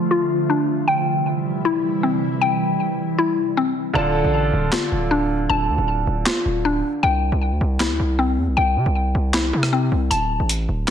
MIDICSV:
0, 0, Header, 1, 6, 480
1, 0, Start_track
1, 0, Key_signature, -1, "minor"
1, 0, Tempo, 384615
1, 1097, Time_signature, 4, 2, 24, 8
1, 13608, End_track
2, 0, Start_track
2, 0, Title_t, "Synth pluck"
2, 0, Program_c, 0, 84
2, 0, Note_on_c, 0, 62, 90
2, 0, Note_on_c, 0, 81, 104
2, 135, Note_on_c, 0, 65, 87
2, 604, Note_off_c, 0, 62, 0
2, 619, Note_on_c, 0, 62, 89
2, 1093, Note_on_c, 0, 79, 113
2, 1096, Note_off_c, 0, 65, 0
2, 1096, Note_off_c, 0, 81, 0
2, 1098, Note_off_c, 0, 62, 0
2, 2059, Note_on_c, 0, 64, 89
2, 2537, Note_on_c, 0, 60, 77
2, 2998, Note_off_c, 0, 79, 0
2, 3013, Note_on_c, 0, 79, 104
2, 3960, Note_off_c, 0, 64, 0
2, 3975, Note_on_c, 0, 64, 95
2, 4445, Note_off_c, 0, 60, 0
2, 4460, Note_on_c, 0, 60, 90
2, 4933, Note_on_c, 0, 81, 110
2, 4935, Note_off_c, 0, 79, 0
2, 4936, Note_off_c, 0, 64, 0
2, 4938, Note_off_c, 0, 60, 0
2, 5897, Note_on_c, 0, 65, 91
2, 6376, Note_on_c, 0, 62, 92
2, 6843, Note_off_c, 0, 81, 0
2, 6858, Note_on_c, 0, 81, 105
2, 7801, Note_off_c, 0, 65, 0
2, 7816, Note_on_c, 0, 65, 89
2, 8284, Note_off_c, 0, 62, 0
2, 8299, Note_on_c, 0, 62, 91
2, 8773, Note_on_c, 0, 79, 114
2, 8776, Note_off_c, 0, 65, 0
2, 8777, Note_off_c, 0, 81, 0
2, 8778, Note_off_c, 0, 62, 0
2, 9739, Note_on_c, 0, 64, 90
2, 10217, Note_on_c, 0, 60, 80
2, 10678, Note_off_c, 0, 79, 0
2, 10693, Note_on_c, 0, 79, 107
2, 11640, Note_off_c, 0, 64, 0
2, 11655, Note_on_c, 0, 64, 92
2, 12124, Note_off_c, 0, 60, 0
2, 12139, Note_on_c, 0, 60, 89
2, 12612, Note_on_c, 0, 81, 109
2, 12615, Note_off_c, 0, 79, 0
2, 12616, Note_off_c, 0, 64, 0
2, 12618, Note_off_c, 0, 60, 0
2, 13608, Note_off_c, 0, 81, 0
2, 13608, End_track
3, 0, Start_track
3, 0, Title_t, "Grand piano"
3, 0, Program_c, 1, 0
3, 4911, Note_on_c, 1, 50, 73
3, 4932, Note_on_c, 1, 62, 73
3, 4953, Note_on_c, 1, 65, 73
3, 4973, Note_on_c, 1, 69, 84
3, 5148, Control_c, 1, 64, 127
3, 6806, Note_off_c, 1, 50, 0
3, 6816, Note_off_c, 1, 62, 0
3, 6827, Note_off_c, 1, 65, 0
3, 6837, Note_off_c, 1, 69, 0
3, 8792, Control_c, 1, 64, 0
3, 13608, End_track
4, 0, Start_track
4, 0, Title_t, "Ambient pad"
4, 0, Program_c, 2, 92
4, 0, Note_on_c, 2, 50, 83
4, 0, Note_on_c, 2, 53, 77
4, 0, Note_on_c, 2, 57, 79
4, 0, Note_on_c, 2, 65, 92
4, 1058, Note_off_c, 2, 50, 0
4, 1058, Note_off_c, 2, 57, 0
4, 1059, Note_off_c, 2, 53, 0
4, 1059, Note_off_c, 2, 65, 0
4, 1094, Note_on_c, 2, 55, 77
4, 1095, Note_on_c, 2, 48, 87
4, 1096, Note_on_c, 2, 52, 81
4, 1096, Note_on_c, 2, 64, 95
4, 4897, Note_off_c, 2, 55, 0
4, 4898, Note_off_c, 2, 48, 0
4, 4898, Note_off_c, 2, 52, 0
4, 4898, Note_off_c, 2, 64, 0
4, 13608, End_track
5, 0, Start_track
5, 0, Title_t, "808-style bass"
5, 0, Program_c, 3, 38
5, 4937, Note_on_c, 3, 26, 108
5, 5283, Note_off_c, 3, 26, 0
5, 5296, Note_on_c, 3, 33, 98
5, 5642, Note_off_c, 3, 33, 0
5, 5657, Note_on_c, 3, 26, 106
5, 5887, Note_off_c, 3, 26, 0
5, 6138, Note_on_c, 3, 26, 103
5, 6829, Note_off_c, 3, 26, 0
5, 6858, Note_on_c, 3, 26, 106
5, 7097, Note_on_c, 3, 38, 100
5, 7116, Note_off_c, 3, 26, 0
5, 7211, Note_off_c, 3, 38, 0
5, 7217, Note_on_c, 3, 26, 104
5, 7563, Note_off_c, 3, 26, 0
5, 7577, Note_on_c, 3, 26, 104
5, 7807, Note_off_c, 3, 26, 0
5, 8056, Note_on_c, 3, 26, 105
5, 8517, Note_off_c, 3, 26, 0
5, 8775, Note_on_c, 3, 36, 109
5, 9122, Note_off_c, 3, 36, 0
5, 9136, Note_on_c, 3, 36, 105
5, 9377, Note_on_c, 3, 38, 97
5, 9396, Note_off_c, 3, 36, 0
5, 9491, Note_off_c, 3, 38, 0
5, 9497, Note_on_c, 3, 36, 110
5, 9858, Note_on_c, 3, 38, 96
5, 9877, Note_off_c, 3, 36, 0
5, 9972, Note_off_c, 3, 38, 0
5, 9979, Note_on_c, 3, 36, 108
5, 10457, Note_on_c, 3, 40, 95
5, 10476, Note_off_c, 3, 36, 0
5, 10577, Note_on_c, 3, 36, 98
5, 10596, Note_off_c, 3, 40, 0
5, 10691, Note_off_c, 3, 36, 0
5, 10698, Note_on_c, 3, 36, 105
5, 10937, Note_on_c, 3, 48, 98
5, 10955, Note_off_c, 3, 36, 0
5, 11051, Note_off_c, 3, 48, 0
5, 11057, Note_on_c, 3, 36, 104
5, 11403, Note_off_c, 3, 36, 0
5, 11417, Note_on_c, 3, 36, 103
5, 11878, Note_off_c, 3, 36, 0
5, 11898, Note_on_c, 3, 48, 105
5, 12358, Note_off_c, 3, 48, 0
5, 12377, Note_on_c, 3, 36, 100
5, 12608, Note_off_c, 3, 36, 0
5, 12617, Note_on_c, 3, 26, 111
5, 12963, Note_off_c, 3, 26, 0
5, 12977, Note_on_c, 3, 33, 103
5, 13323, Note_off_c, 3, 33, 0
5, 13337, Note_on_c, 3, 26, 104
5, 13568, Note_off_c, 3, 26, 0
5, 13608, End_track
6, 0, Start_track
6, 0, Title_t, "Drums"
6, 5893, Note_on_c, 9, 39, 95
6, 5897, Note_on_c, 9, 38, 117
6, 6018, Note_off_c, 9, 39, 0
6, 6022, Note_off_c, 9, 38, 0
6, 7813, Note_on_c, 9, 39, 97
6, 7817, Note_on_c, 9, 38, 117
6, 7938, Note_off_c, 9, 39, 0
6, 7942, Note_off_c, 9, 38, 0
6, 9734, Note_on_c, 9, 39, 96
6, 9737, Note_on_c, 9, 38, 121
6, 9858, Note_off_c, 9, 39, 0
6, 9862, Note_off_c, 9, 38, 0
6, 11653, Note_on_c, 9, 39, 96
6, 11657, Note_on_c, 9, 38, 118
6, 11778, Note_off_c, 9, 39, 0
6, 11782, Note_off_c, 9, 38, 0
6, 12018, Note_on_c, 9, 37, 101
6, 12143, Note_off_c, 9, 37, 0
6, 12617, Note_on_c, 9, 42, 70
6, 12742, Note_off_c, 9, 42, 0
6, 13097, Note_on_c, 9, 42, 83
6, 13222, Note_off_c, 9, 42, 0
6, 13608, End_track
0, 0, End_of_file